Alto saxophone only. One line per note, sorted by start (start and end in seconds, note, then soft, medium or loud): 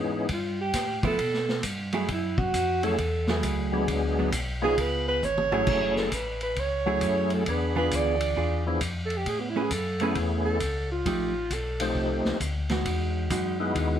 0.33 0.59 F4 medium
0.61 1.02 G4 medium
1.07 1.62 A4 loud
2.12 2.40 E4 medium
2.38 2.85 F#4 medium
2.84 3.44 A4 loud
4.64 4.82 G#4 loud
4.81 5.07 B4 medium
5.08 5.26 B4 loud
5.25 5.97 C#5 loud
5.97 6.16 A4 medium
6.14 6.42 B4 medium
6.43 6.61 B4 medium
6.60 7.32 C#5 medium
7.34 7.52 A4 medium
7.50 7.77 B4 medium
7.78 7.97 B4 medium
7.96 8.68 D5 medium
9.06 9.19 A4 medium
9.17 9.30 G4 medium
9.28 9.41 G#4 medium
9.40 9.51 B3 medium
9.49 9.64 E4 medium
9.62 9.74 G#4 medium
9.72 10.17 A4 medium
10.45 10.87 A4 medium
10.92 11.55 F4 medium
11.53 12.26 A4 medium